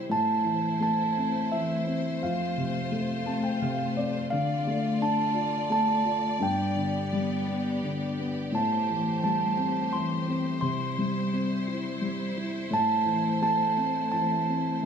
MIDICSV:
0, 0, Header, 1, 4, 480
1, 0, Start_track
1, 0, Tempo, 701754
1, 64, Time_signature, 3, 2, 24, 8
1, 10160, End_track
2, 0, Start_track
2, 0, Title_t, "Handbells"
2, 0, Program_c, 0, 14
2, 79, Note_on_c, 0, 81, 90
2, 557, Note_off_c, 0, 81, 0
2, 565, Note_on_c, 0, 81, 81
2, 1038, Note_on_c, 0, 76, 70
2, 1056, Note_off_c, 0, 81, 0
2, 1525, Note_on_c, 0, 77, 70
2, 1531, Note_off_c, 0, 76, 0
2, 2687, Note_off_c, 0, 77, 0
2, 2944, Note_on_c, 0, 77, 89
2, 3394, Note_off_c, 0, 77, 0
2, 3435, Note_on_c, 0, 81, 85
2, 3905, Note_off_c, 0, 81, 0
2, 3913, Note_on_c, 0, 81, 86
2, 4396, Note_on_c, 0, 79, 78
2, 4398, Note_off_c, 0, 81, 0
2, 5325, Note_off_c, 0, 79, 0
2, 5847, Note_on_c, 0, 81, 71
2, 6311, Note_off_c, 0, 81, 0
2, 6319, Note_on_c, 0, 81, 78
2, 6790, Note_on_c, 0, 84, 82
2, 6810, Note_off_c, 0, 81, 0
2, 7249, Note_off_c, 0, 84, 0
2, 7258, Note_on_c, 0, 84, 86
2, 8425, Note_off_c, 0, 84, 0
2, 8711, Note_on_c, 0, 81, 92
2, 9176, Note_off_c, 0, 81, 0
2, 9184, Note_on_c, 0, 81, 94
2, 9648, Note_off_c, 0, 81, 0
2, 9656, Note_on_c, 0, 81, 89
2, 10160, Note_off_c, 0, 81, 0
2, 10160, End_track
3, 0, Start_track
3, 0, Title_t, "String section"
3, 0, Program_c, 1, 48
3, 76, Note_on_c, 1, 57, 68
3, 77, Note_on_c, 1, 72, 79
3, 78, Note_on_c, 1, 64, 68
3, 1507, Note_off_c, 1, 64, 0
3, 1518, Note_on_c, 1, 65, 68
3, 2925, Note_off_c, 1, 72, 0
3, 2933, Note_off_c, 1, 65, 0
3, 2949, Note_on_c, 1, 65, 73
3, 2950, Note_on_c, 1, 74, 88
3, 4355, Note_off_c, 1, 57, 0
3, 4364, Note_off_c, 1, 65, 0
3, 4379, Note_on_c, 1, 67, 68
3, 4380, Note_on_c, 1, 59, 73
3, 5803, Note_off_c, 1, 74, 0
3, 5815, Note_off_c, 1, 59, 0
3, 5824, Note_on_c, 1, 72, 77
3, 5825, Note_on_c, 1, 57, 69
3, 7245, Note_off_c, 1, 67, 0
3, 7256, Note_off_c, 1, 57, 0
3, 7264, Note_on_c, 1, 64, 69
3, 7268, Note_on_c, 1, 55, 67
3, 8681, Note_off_c, 1, 55, 0
3, 8695, Note_on_c, 1, 57, 79
3, 10109, Note_off_c, 1, 64, 0
3, 10124, Note_off_c, 1, 57, 0
3, 10139, Note_on_c, 1, 55, 79
3, 10160, Note_off_c, 1, 55, 0
3, 10160, Note_off_c, 1, 72, 0
3, 10160, End_track
4, 0, Start_track
4, 0, Title_t, "Felt piano"
4, 0, Program_c, 2, 0
4, 0, Control_c, 2, 64, 127
4, 0, Note_on_c, 2, 55, 47
4, 0, Note_on_c, 2, 64, 48
4, 0, Note_on_c, 2, 67, 51
4, 0, Note_on_c, 2, 72, 64
4, 0, Note_on_c, 2, 76, 55
4, 0, Note_on_c, 2, 79, 69
4, 65, Note_on_c, 2, 45, 61
4, 74, Control_c, 2, 64, 0
4, 75, Note_off_c, 2, 64, 0
4, 75, Note_off_c, 2, 67, 0
4, 77, Note_off_c, 2, 72, 0
4, 78, Note_off_c, 2, 76, 0
4, 81, Note_off_c, 2, 55, 0
4, 81, Note_off_c, 2, 79, 0
4, 179, Control_c, 2, 64, 127
4, 302, Note_on_c, 2, 52, 49
4, 548, Note_on_c, 2, 57, 48
4, 801, Note_on_c, 2, 60, 50
4, 1033, Note_off_c, 2, 52, 0
4, 1044, Note_on_c, 2, 52, 51
4, 1268, Note_off_c, 2, 60, 0
4, 1278, Note_on_c, 2, 60, 54
4, 1487, Note_off_c, 2, 57, 0
4, 1488, Note_off_c, 2, 45, 0
4, 1506, Note_off_c, 2, 52, 0
4, 1510, Note_off_c, 2, 60, 0
4, 1522, Note_on_c, 2, 41, 67
4, 1524, Control_c, 2, 64, 0
4, 1654, Control_c, 2, 64, 127
4, 1763, Note_on_c, 2, 48, 52
4, 1995, Note_on_c, 2, 57, 54
4, 2230, Note_on_c, 2, 81, 63
4, 2231, Note_on_c, 2, 60, 52
4, 2343, Note_off_c, 2, 81, 0
4, 2348, Note_on_c, 2, 79, 63
4, 2461, Note_off_c, 2, 79, 0
4, 2464, Note_off_c, 2, 48, 0
4, 2475, Note_on_c, 2, 48, 58
4, 2477, Note_on_c, 2, 77, 69
4, 2695, Note_off_c, 2, 77, 0
4, 2705, Note_off_c, 2, 60, 0
4, 2715, Note_on_c, 2, 74, 67
4, 2716, Note_on_c, 2, 60, 58
4, 2918, Note_off_c, 2, 57, 0
4, 2922, Note_off_c, 2, 41, 0
4, 2932, Note_off_c, 2, 74, 0
4, 2933, Note_off_c, 2, 48, 0
4, 2942, Note_off_c, 2, 60, 0
4, 2956, Control_c, 2, 64, 0
4, 2958, Note_on_c, 2, 50, 70
4, 3083, Control_c, 2, 64, 127
4, 3195, Note_on_c, 2, 57, 53
4, 3426, Note_on_c, 2, 62, 52
4, 3654, Note_on_c, 2, 65, 55
4, 3887, Note_off_c, 2, 57, 0
4, 3898, Note_on_c, 2, 57, 54
4, 4126, Note_off_c, 2, 65, 0
4, 4137, Note_on_c, 2, 65, 56
4, 4351, Note_off_c, 2, 62, 0
4, 4355, Note_off_c, 2, 50, 0
4, 4362, Note_off_c, 2, 57, 0
4, 4369, Note_off_c, 2, 65, 0
4, 4376, Note_on_c, 2, 43, 73
4, 4385, Control_c, 2, 64, 0
4, 4519, Control_c, 2, 64, 127
4, 4624, Note_on_c, 2, 50, 45
4, 4874, Note_on_c, 2, 55, 53
4, 5114, Note_on_c, 2, 59, 49
4, 5344, Note_off_c, 2, 50, 0
4, 5354, Note_on_c, 2, 50, 52
4, 5595, Note_off_c, 2, 59, 0
4, 5605, Note_on_c, 2, 59, 51
4, 5801, Note_off_c, 2, 43, 0
4, 5809, Note_off_c, 2, 55, 0
4, 5819, Note_off_c, 2, 50, 0
4, 5829, Note_on_c, 2, 45, 65
4, 5831, Note_off_c, 2, 59, 0
4, 5838, Control_c, 2, 64, 0
4, 5940, Control_c, 2, 64, 127
4, 6084, Note_on_c, 2, 52, 45
4, 6317, Note_on_c, 2, 55, 54
4, 6547, Note_on_c, 2, 60, 51
4, 6782, Note_off_c, 2, 52, 0
4, 6792, Note_on_c, 2, 52, 50
4, 7023, Note_off_c, 2, 60, 0
4, 7033, Note_on_c, 2, 60, 58
4, 7245, Note_off_c, 2, 45, 0
4, 7248, Note_off_c, 2, 55, 0
4, 7258, Note_off_c, 2, 52, 0
4, 7264, Note_on_c, 2, 48, 66
4, 7265, Note_off_c, 2, 60, 0
4, 7279, Control_c, 2, 64, 0
4, 7382, Control_c, 2, 64, 127
4, 7513, Note_on_c, 2, 55, 48
4, 7752, Note_on_c, 2, 60, 51
4, 7986, Note_on_c, 2, 64, 54
4, 8209, Note_off_c, 2, 55, 0
4, 8219, Note_on_c, 2, 55, 56
4, 8450, Note_off_c, 2, 64, 0
4, 8460, Note_on_c, 2, 64, 51
4, 8666, Note_off_c, 2, 48, 0
4, 8672, Note_off_c, 2, 60, 0
4, 8682, Note_off_c, 2, 55, 0
4, 8691, Note_off_c, 2, 64, 0
4, 8691, Note_on_c, 2, 45, 67
4, 8706, Control_c, 2, 64, 0
4, 8821, Control_c, 2, 64, 127
4, 8930, Note_on_c, 2, 52, 51
4, 9176, Note_on_c, 2, 57, 54
4, 9418, Note_on_c, 2, 60, 52
4, 9654, Note_off_c, 2, 52, 0
4, 9664, Note_on_c, 2, 52, 55
4, 9896, Note_off_c, 2, 60, 0
4, 9906, Note_on_c, 2, 60, 54
4, 10109, Note_off_c, 2, 45, 0
4, 10112, Note_off_c, 2, 57, 0
4, 10128, Note_off_c, 2, 52, 0
4, 10136, Note_off_c, 2, 60, 0
4, 10150, Control_c, 2, 64, 0
4, 10160, End_track
0, 0, End_of_file